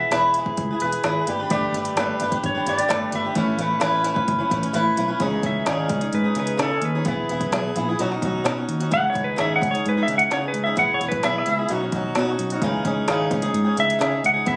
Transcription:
Already playing: E3 E4 G#4 B4 E5
0.10 E1 E3 E4 G#4 B4, snare, closed hi-hat
0.34 E3 E4, closed hi-hat
0.39 G#4 B4
0.46 kick
0.57 C#2, kick, closed hi-hat
0.71 E4 G#4 B4
0.80 E1 E3 E4 B4, closed hi-hat
0.85 G#4 B4
0.92 closed hi-hat
1.04 G#1 E3 E4 G#4 B4, snare, closed hi-hat
1.27 G1 A3 D4 G4 B4, closed hi-hat
1.39 D4 G4 B4
1.50 G1 G3 A3 D4 G4 B4, kick, closed hi-hat
1.72 G1 A3, closed hi-hat
1.76 D4 G4 B4
1.85 closed hi-hat
1.95 G1 G3 A3, snare, closed hi-hat
2.00 D4 G4 B4
2.20 G1 A3 D4 G4 B4, closed hi-hat
2.31 D4 G4 B4, kick, closed hi-hat
2.43 G1 C#5, kick, closed hi-hat
2.55 D4 G4 B4
2.66 G1 A3 D4 G4 B4 D5, closed hi-hat
2.77 D4 G4 B4, closed hi-hat
2.88 G1 G3 A3 D4 G4 B4, snare, closed hi-hat
3.12 G1 A3 D4 G4 B4 E5, closed hi-hat
3.25 D4 G4 B4
3.35 A1 A3 C#4 E4 B4, kick, closed hi-hat
3.58 A1 A3 C#4 E4 B4, closed hi-hat
3.80 A1 A3 C#4 E4 B4, snare, closed hi-hat
4.04 A3 C#4 E4 B4, closed hi-hat
4.14 C#4 E4 B4, kick
4.28 F#1, kick, closed hi-hat
4.38 C#4 E4 B4
4.50 A1 A3 C#4 E4 B4, kick, closed hi-hat
4.63 C#4 E4 B4, closed hi-hat
4.73 A1 A3 C#4 E4 B4, closed hi-hat
4.97 B1 A3 C#4 E4 B4, closed hi-hat
5.08 C#4 E4 B4
5.20 C#2 C#3 E3 C#4 D#4 G#4, kick, closed hi-hat
5.42 C#2 E3 C#4 D#4 G#4, kick, closed hi-hat
5.46 E5
5.66 G#1 C#3 E3 C#4 D#4 G#4 D5, snare, closed hi-hat
5.88 C#2 E3 C#4 D#4 G#4, kick, closed hi-hat
6.00 C#4 D#4 G#4, closed hi-hat
6.13 G#2 B4, closed hi-hat
6.24 C#4 D#4 G#4
6.35 C#2 E3 C#4 D#4 G#4, closed hi-hat
6.40 B4
6.47 closed hi-hat
6.57 C#3 E3 C#4 D#4 G#4, snare, closed hi-hat
6.63 A4
6.71 C#4 D#4 G#4
6.82 D#2 B4, closed hi-hat
6.95 C#4 D#4 G#4
7.05 E1 E3 B3 E4 G#4 B4, kick, closed hi-hat
7.29 E1 E3 B3 E4 G#4, closed hi-hat
7.41 kick, closed hi-hat
7.51 B1 E3 B3 E4 G#4, snare, closed hi-hat
7.76 A#1 E3 B3 E4 G#4, closed hi-hat
7.89 B3 E4 G#4
7.99 B1 B2 F#3 C#4 D#4 F#4, closed hi-hat
8.11 C#4 D#4 F#4, snare
8.22 B1 F#3 C#4 D#4 F#4, kick, closed hi-hat
8.44 B2 F#3 C#4 D#4 F#4, snare, closed hi-hat
8.58 C#4 D#4 F#4
8.68 D#2, closed hi-hat
8.80 C#4 D#4 F#4, closed hi-hat
8.91 C#2 C#3 E3 C#4 D#4 G#4 F#5, kick, closed hi-hat
9.10 E3 C#4 C#5
9.14 C#2 D#4 G#4, kick, closed hi-hat
9.24 B4
9.36 G#1 C#3 E3 C#4 D#4 G#4, snare, closed hi-hat
9.40 E5
9.56 F#5
9.61 C#2 E3 C#4 D#4 G#4, kick, closed hi-hat
9.71 C#4 D#4 G#4 C#5, closed hi-hat
9.86 G#2 B4, closed hi-hat
9.97 C#4 D#4 G#4
10.03 E5
10.07 C#2 E3 C#4 D#4 G#4, closed hi-hat
10.18 F#5, closed hi-hat
10.30 C#3 E3 C#4 D#4 G#4 C#5, snare, closed hi-hat
10.41 C#4 D#4 G#4
10.48 B4
10.53 C#2, closed hi-hat
10.64 C#4 D#4 G#4 E5
10.76 E1 E3 B3 E4 G#4 F#5, kick, closed hi-hat
10.94 C#5
11.00 E1 E3 B3 E4 G#4, closed hi-hat
11.09 B4, kick, closed hi-hat
11.23 B1 E3 B3 E4 G#4 E5, snare, closed hi-hat
11.38 E5
11.46 C#2 E3 B3 E4 G#4, closed hi-hat
11.59 B3 E4 G#4
11.69 B1 B2 F#3 C#4 D#4 F#4, closed hi-hat
11.81 C#4 D#4 F#4
11.92 B1 F#3 C#4 D#4 F#4, kick, closed hi-hat
12.15 B2 F#3 C#4 D#4 F#4, snare, closed hi-hat
12.29 C#4 D#4 F#4
12.39 B1, closed hi-hat
12.50 D#4 F#4, closed hi-hat
12.55 C#4
12.62 C#2 C#3 E3 C#4 D#4 G#4, kick, closed hi-hat
12.85 C#2 E3 C#4 D#4 G#4, kick, closed hi-hat
13.08 G#1 C#3 E3 C#4 D#4 G#4, snare, closed hi-hat
13.30 C#2 E3 C#4 D#4 G#4, kick, closed hi-hat
13.42 C#4 D#4 G#4, closed hi-hat
13.54 G#2, closed hi-hat
13.64 C#4 D#4 G#4
13.76 C#2 E3 C#4 D#4 G#4 E5, closed hi-hat
13.90 closed hi-hat
13.99 C#3 E3 C#4 D#4 G#4 E5, snare, closed hi-hat
14.10 C#4 D#4 G#4
14.24 C#2 F#5, closed hi-hat
14.34 C#4 D#4 G#4
14.45 E1 E3 B3 E4 G#4 E5, kick, closed hi-hat

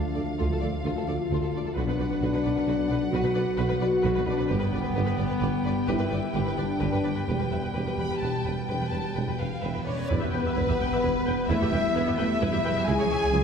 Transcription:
Already playing: F3 A3 D4 F5
0.15 D2 A4 D5
0.39 D2 F4 A4
0.51 D2 A4
0.61 D2 A4 D5
0.84 D2 F4 A4
0.97 D2 A4
1.08 D2 F4 A4 D5
1.30 D2 F4 A4
1.41 D2 A4
1.53 D2 A4 D5
1.64 D2 A4
1.75 B1 B2 F#3 B3 D4 F#4 B4 F#5
1.87 B2 B4
1.98 B1 B2 B4 D5
2.10 B2 B4
2.20 B1 B2 F#4 B4
2.33 B2 B4
2.43 B1 B2 B4 D5
2.56 B2 B4
2.67 B1 B2 F#4 B4
2.89 B1 B2 B4 D5
3.11 B1 B2 F#4 B4
3.23 B2 B4
3.35 B1 B2 B4 D5
3.57 B1 B2 F#4 B4
3.69 B2 B4
3.80 B1 B2 F#4 B4 D5
4.04 B1 B2 F#4 B4
4.15 B2 B4
4.27 B1 B2 D4 B4 D5
4.38 B2 B4
4.47 G1 G2 G3 B3 G4 B4 G5
4.60 G2 B4
4.72 G1 G2 B4 D5
4.83 G2 B4
4.94 G1 G2 G4 B4
5.06 G2 B4
5.17 G1 G2 B4 D5
5.27 G2 B4
5.40 G1 G2 G4 B4
5.64 G1 G2 B4 D5
5.87 G1 G2 E4 G4 B4
5.98 G2 B4
6.10 G1 G2 B4 D5
6.34 G1 G2 G4 B4
6.45 G2 B4
6.56 G1 G2 D4 B4 D5
6.80 G1 G2 G4 B4
6.93 G2 B4
7.04 G1 G2 B4 D5
7.15 G2 B4
7.27 E1 E2 G3 B3 G4 B4, reverse cymbal
7.38 E2 B4
7.51 E1 E2 B4 E5
7.62 E2 B4
7.74 E1 E2 G4 B4
7.85 E2 B4
7.97 E1 E2 B4 B5
8.09 E2 B4
8.20 E1 E2 B4 A5
8.44 E1 E2 B4 G5
8.67 E1 E2 B4 G5
8.80 E2 B4
8.91 E1 E2 B4 A5
9.15 E1 E2 B4 G5
9.27 E2 B4
9.39 E1 E2 B4 F5
9.62 E1 E2 B4 E5
9.74 E2 B4
9.86 E1 E2 C#4 B4 C#5 D5
9.98 E2 B4
10.09 E1 E2 G3 B3 E4 B4, sub drop
10.20 E2 G4 E5
10.33 E1 E2 B4 G5
10.46 E2 G4 E5
10.56 E1 E2 E4 B4
10.69 E2 G4 E5
10.79 E1 E2 B4 G5
10.91 E2 G4 E5
11.02 E1 E2 E4 B4
11.26 E1 E2 B4 G5
11.47 E1 E2 A3 E4 B4 E5
11.61 E2 G4 E5
11.71 E1 E2 G3 B4 G5
11.95 E1 E2 B3 E4 B4
12.07 E2 G4 E5
12.16 E1 E2 A3 E4 B4 E5 G5
12.20 E5
12.41 E1 E2 G3 E4 B4
12.52 E2 G4 E5
12.64 E1 E2 F#3 B4 G5
12.76 E2 G4 E5
12.85 C#2 E3 G#3 C#4 E4 G#4 G#5
12.99 C#2 G#4 C#5
13.09 C#2 E3 C#5 E5
13.22 C#2 G#4 C#5
13.32 C#2 F#3 E4 G#4

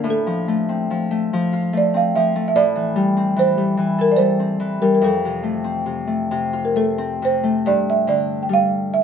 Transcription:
Already playing: G2 D3 D4 G4
0.04 A2
0.10 A4
0.27 F3
0.48 A3
0.69 C4
0.91 F3
1.11 A3
1.33 F3
1.53 F4
1.73 A3
1.77 D5
1.94 C4 F5
2.16 F3 E5
2.36 A3
2.48 E5
2.56 A2 D5
2.75 E3
2.96 G3
3.17 C4
3.36 E3 C5
3.58 G3
3.77 E3
3.98 A4 A#4
4.12 D5
4.16 G3 C5
4.40 C4
4.60 E3
4.82 G3 A#4
4.95 A#4
5.01 F2 A4
5.25 C3
5.43 A3
5.64 C4
5.86 C3
6.07 A3
6.31 C3
6.53 F4
6.65 A#4
6.76 A3 A4
6.98 C4
7.22 C3 C5
7.44 A3
7.66 G2 D5
7.90 E5
8.07 D3 D5
8.43 G5
8.49 G3
8.53 F5
8.94 E5

